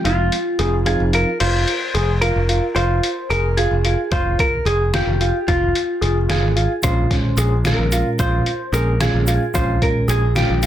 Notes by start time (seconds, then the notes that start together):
Already playing: F3 G#3 C4
0.04 F1 F4, closed hi-hat
0.32 closed hi-hat
0.59 F1 F3 C4 G#4, closed hi-hat
0.85 F3 C4 D#4 F4 G#4, closed hi-hat
1.00 F1
1.13 F4 A#4, closed hi-hat
1.40 F1 F4 C5, closed hi-hat, crash
1.68 closed hi-hat
1.94 F1 G#4, closed hi-hat
2.21 F4 A#4, closed hi-hat
2.36 F1
2.49 F4, closed hi-hat
2.75 F1 F4 C5, closed hi-hat
3.03 closed hi-hat
3.30 F1 G#4 A#4, closed hi-hat
3.57 F4 G#4, closed hi-hat
3.71 F1
3.84 F4, closed hi-hat
4.11 F1 F4 C5, kick, closed hi-hat
4.39 A#4, kick, closed hi-hat
4.65 F1 G#4, closed hi-hat
4.93 F4 G4, snare, closed hi-hat
5.07 F1
5.20 F4, closed hi-hat
5.48 F1 F4, kick, closed hi-hat
5.75 closed hi-hat
6.01 F1 G#4, closed hi-hat
6.29 F4 G#4, snare, closed hi-hat
6.43 G#1
6.56 F4, closed hi-hat
6.82 A#1 A#2 G#3 C#4 F4 C5, kick, closed hi-hat, shaker
7.10 A#2 G#3 C#4, kick, snare, closed hi-hat
7.37 A#1 G#4, closed hi-hat, shaker
7.65 A#2 G#3 C#4 F4 A#4, snare, closed hi-hat, shaker
7.78 A#1
7.92 F4, closed hi-hat, shaker
8.19 A#1 F4 C5, kick, closed hi-hat, shaker
8.46 closed hi-hat
8.73 A#1 A#2 G#3 C#4 G#4 A#4, closed hi-hat, shaker
9.00 A#2 G#3 C#4 F4 G#4, snare, closed hi-hat, shaker
9.14 A#1
9.27 F4, closed hi-hat, shaker
9.54 A#1 A#2 G#3 C#4 F4 C5, kick, closed hi-hat, shaker
9.81 A#2 G#3 C#4 A#4, kick, closed hi-hat
10.08 A#1 G#4, closed hi-hat, shaker
10.35 A#2 G#3 C#4 F4 G4, snare, closed hi-hat, shaker
10.50 A#1
10.63 F4, closed hi-hat, shaker